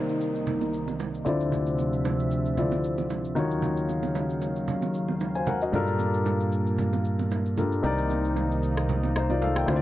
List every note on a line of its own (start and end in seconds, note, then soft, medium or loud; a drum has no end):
0.00 1.24 C2 medium
0.00 1.21 C3 medium
0.00 1.24 D#3 medium
0.00 1.22 A#3 medium
0.00 1.22 C4 medium
0.00 1.22 D#4 medium
0.00 1.24 D#4 medium
0.00 1.23 A#4 medium
0.00 1.23 D5 medium
0.00 downlifter medium
0.09 shaker soft
0.21 shaker medium
0.35 shaker soft
0.47 low conga medium
0.47 shaker medium
0.61 low bongo medium
0.61 shaker medium
0.73 shaker medium
0.88 low bongo medium
0.88 shaker medium
1.00 high bongo medium
1.00 shaker medium
1.14 shaker soft
1.25 3.34 D2 medium
1.25 3.34 C3 medium
1.25 2.54 D3 medium
1.25 3.34 F3 medium
1.25 2.55 C4 medium
1.25 2.55 E4 medium
1.25 2.55 F4 medium
1.25 2.56 D5 medium
1.25 3.34 E5 medium
1.25 low conga medium
1.25 shaker medium
1.41 shaker medium
1.52 low conga medium
1.52 shaker medium
1.67 shaker medium
1.78 low bongo soft
1.78 shaker medium
1.93 shaker medium
2.05 high bongo medium
2.05 shaker medium
2.19 shaker soft
2.31 shaker medium
2.46 shaker soft
2.57 3.36 D3 medium
2.57 3.36 C4 medium
2.57 3.37 E4 soft
2.57 3.35 F4 medium
2.57 3.37 D5 medium
2.57 low conga medium
2.57 shaker medium
2.72 low bongo medium
2.72 shaker medium
2.84 shaker medium
2.98 low bongo medium
2.98 shaker medium
3.10 high bongo medium
3.10 shaker medium
3.25 shaker soft
3.35 5.71 D#2 medium
3.35 5.71 C#3 medium
3.35 5.42 D#3 medium
3.35 5.71 F#3 medium
3.35 5.43 D#4 medium
3.35 4.91 F4 medium
3.35 4.92 F#4 medium
3.35 4.92 C#5 medium
3.35 7.80 F5 medium
3.35 low conga medium
3.35 shaker loud
3.51 shaker medium
3.62 low conga medium
3.62 shaker medium
3.77 shaker medium
3.89 low bongo soft
3.89 shaker medium
4.03 low bongo medium
4.03 shaker medium
4.15 high bongo medium
4.15 shaker medium
4.30 shaker soft
4.42 high bongo soft
4.42 shaker medium
4.56 shaker soft
4.68 low conga medium
4.68 shaker medium
4.82 low bongo medium
4.82 shaker medium
4.94 shaker medium
5.08 low bongo medium
5.20 high bongo medium
5.20 shaker medium
5.35 5.47 C5 medium
5.35 5.46 G#5 medium
5.35 shaker soft
5.47 5.61 A#4 medium
5.47 5.61 F#5 medium
5.47 high bongo medium
5.47 low conga medium
5.47 shaker medium
5.62 5.87 F#4 medium
5.62 5.87 D#5 medium
5.62 shaker medium
5.72 7.80 G2 medium
5.72 7.82 A#2 medium
5.72 7.53 G3 medium
5.72 7.82 A#3 medium
5.72 7.54 D4 medium
5.72 7.54 F4 medium
5.72 7.54 A4 medium
5.72 7.55 A#4 medium
5.72 low conga medium
5.72 shaker medium
5.87 shaker medium
5.99 low bongo soft
5.99 shaker medium
6.14 shaker medium
6.26 high bongo medium
6.26 shaker medium
6.41 shaker soft
6.52 shaker medium
6.67 shaker soft
6.78 low conga medium
6.78 shaker medium
6.93 low bongo medium
6.93 shaker soft
7.05 shaker medium
7.19 low bongo medium
7.19 shaker medium
7.31 high bongo medium
7.31 shaker medium
7.46 shaker soft
7.57 7.84 G3 medium
7.57 7.84 D4 medium
7.57 7.84 F4 medium
7.57 7.84 A4 medium
7.57 7.84 A#4 medium
7.57 low conga medium
7.57 shaker loud
7.72 shaker medium
7.83 9.64 C2 medium
7.83 9.64 C3 medium
7.83 9.66 D#3 medium
7.83 9.66 A#3 medium
7.83 9.64 C4 medium
7.83 9.66 D#4 medium
7.83 9.13 D#4 medium
7.83 9.13 A#4 medium
7.83 9.14 D5 medium
7.83 low conga medium
7.83 shaker medium
7.98 shaker medium
8.10 low bongo soft
8.10 shaker medium
8.25 shaker medium
8.36 high bongo medium
8.36 shaker medium
8.51 shaker soft
8.63 shaker medium
8.77 cross-stick medium
8.77 shaker soft
8.89 low conga medium
8.89 shaker medium
9.03 low bongo medium
9.03 shaker medium
9.16 9.30 D#4 medium
9.16 9.29 C5 medium
9.16 cross-stick medium
9.16 shaker medium
9.30 9.42 F4 medium
9.30 9.41 D5 medium
9.30 low bongo medium
9.30 shaker medium
9.42 9.56 A4 medium
9.42 9.55 F5 medium
9.42 high bongo medium
9.42 shaker medium
9.56 9.82 A#4 medium
9.56 9.81 G5 medium
9.56 cross-stick medium
9.56 shaker soft
9.66 9.82 D2 medium
9.66 9.82 C3 medium
9.66 9.82 D3 medium
9.66 9.82 F3 medium
9.66 9.82 C4 medium
9.66 9.82 E4 medium
9.66 9.82 F4 medium
9.66 9.76 C5 medium
9.66 9.82 E5 medium
9.66 cross-stick medium
9.66 low conga medium
9.66 shaker loud
9.76 9.82 D5 medium